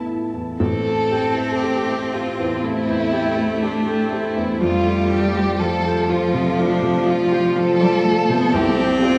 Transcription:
0.00 0.56 A1 soft
0.00 0.62 B3 soft
0.00 0.07 E4 soft
0.00 0.62 F4 soft
0.00 0.59 A4 medium
0.00 0.64 B4 soft
0.00 0.32 A5 soft
0.00 0.64 B5 soft
0.06 0.49 E4 soft
0.06 1.36 E5 soft
0.34 0.60 E2 soft
0.34 4.24 A5 soft
0.59 2.59 A1 medium
0.59 2.64 C4 medium
0.59 1.58 A4 medium
0.59 1.62 A4 medium
0.86 1.26 A3 medium
1.11 1.52 G4 medium
1.11 3.12 G5 medium
1.35 1.61 A4 soft
1.35 1.87 E5 medium
1.61 2.12 G4 medium
1.61 2.02 G4 soft
1.61 2.63 A4 medium
1.88 2.28 A3 medium
1.88 2.12 E5 medium
2.12 2.62 F4 medium
2.12 2.53 G4 medium
2.12 3.37 E5 medium
2.39 2.78 E2 soft
2.39 2.87 C5 medium
2.62 4.58 A3 loud
2.62 3.03 A3 medium
2.62 3.62 E4 medium
2.62 3.62 A4 medium
2.87 3.27 E2 medium
2.87 4.10 C5 medium
3.13 3.52 G4 medium
3.13 3.86 G5 medium
3.38 3.62 A4 medium
3.38 4.35 E5 medium
3.63 4.12 D4 medium
3.63 4.02 G4 medium
3.63 6.34 A4 medium
3.87 4.26 A3 medium
3.87 4.64 G5 medium
4.11 4.61 E4 medium
4.11 4.51 G4 medium
4.11 5.34 C5 medium
4.36 4.61 E2 medium
4.36 4.64 E5 medium
4.59 6.54 F2 medium
4.59 5.57 G3 loud
4.59 5.60 F4 medium
4.59 5.10 F4 medium
4.86 5.25 A3 medium
5.11 5.51 F4 medium
5.11 5.59 G4 medium
5.11 7.07 D5 medium
5.36 5.60 G4 medium
5.36 5.85 C5 medium
5.60 7.82 F3 loud
5.60 6.00 F4 medium
5.60 6.58 F4 medium
5.60 6.10 A4 medium
5.85 6.24 A3 medium
5.85 6.10 C5 medium
6.10 6.48 F4 medium
6.10 6.59 F4 medium
6.10 7.30 C5 medium
6.34 6.72 C3 medium
6.34 6.82 A4 medium
6.58 6.97 A3 medium
6.58 7.07 D4 medium
6.58 7.54 F4 loud
6.82 7.21 C3 medium
6.82 8.04 A4 medium
7.07 7.45 F4 medium
7.07 7.55 F4 medium
7.07 7.79 D5 medium
7.31 7.55 G4 medium
7.31 8.28 C5 medium
7.55 8.56 F4 loud
7.55 7.94 F4 medium
7.55 8.53 A4 loud
7.80 8.04 G3 loud
7.80 8.19 A3 medium
7.80 9.00 D5 medium
8.03 8.30 A3 loud
8.03 8.43 F4 medium
8.03 8.56 A4 medium
8.28 8.53 C3 medium
8.28 8.54 B3 loud
8.28 9.18 C5 medium
8.52 9.18 C2 loud
8.52 9.18 C4 loud
8.52 9.02 G4 medium
8.78 9.16 G3 medium
9.01 9.18 F4 medium
9.01 9.18 G4 medium
9.01 9.18 D5 medium

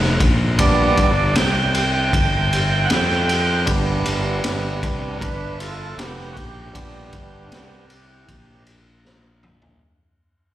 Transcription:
0.00 0.18 F1 medium
0.00 snare soft
0.20 0.94 A#1 medium
0.20 kick loud
0.20 ride medium
0.58 1.11 G3 medium
0.58 1.11 B3 soft
0.58 1.11 D4 medium
0.58 1.35 D5 medium
0.58 kick loud
0.58 ride loud
0.97 1.34 G1 medium
0.97 kick loud
0.97 ride medium
1.35 2.09 C2 medium
1.35 1.73 G5 medium
1.35 snare loud
1.35 ride medium
1.75 1.93 G5 medium
1.75 ride medium
1.94 2.88 G5 medium
2.13 2.87 G1 loud
2.13 kick loud
2.13 ride medium
2.53 ride medium
2.85 2.90 F#5 medium
2.89 3.64 F2 medium
2.89 3.65 G5 loud
2.89 snare loud
2.89 ride medium
3.10 snare soft
3.29 ride medium
3.65 4.04 G1 medium
3.65 4.81 G3 medium
3.65 4.82 B3 medium
3.65 4.82 D4 medium
3.65 kick loud
3.65 ride medium
4.05 4.43 G1 medium
4.05 ride medium
4.44 4.81 G1 medium
4.44 snare loud
4.44 ride loud
4.82 5.19 C2 loud
4.82 5.17 G3 medium
4.82 5.18 B3 soft
4.82 5.18 D4 medium
4.82 kick loud
4.82 ride medium
5.20 5.94 G1 medium
5.20 5.58 D4 medium
5.20 5.24 A#4 medium
5.20 5.60 B4 loud
5.20 kick loud
5.20 ride loud
5.60 5.96 F4 medium
5.60 5.98 A4 medium
5.60 ride medium
5.98 6.34 F1 loud
5.98 6.34 B3 medium
5.98 6.36 G4 medium
5.98 snare loud
5.98 ride loud
6.19 snare soft
6.33 7.10 A#1 medium
6.33 6.37 F#4 medium
6.33 kick loud
6.37 8.64 G4 loud
6.37 ride medium
6.73 7.85 G3 medium
6.73 7.86 B3 medium
6.73 7.86 D4 medium
6.73 kick loud
6.73 ride loud
7.12 7.49 G1 loud
7.12 kick loud
7.12 ride medium
7.52 8.25 C2 loud
7.52 snare loud
7.52 ride medium
7.90 ride medium
8.28 9.78 A#1 medium
8.28 kick loud
8.28 ride medium
8.66 ride medium
9.05 snare medium
9.43 mid tom medium
9.62 floor tom medium

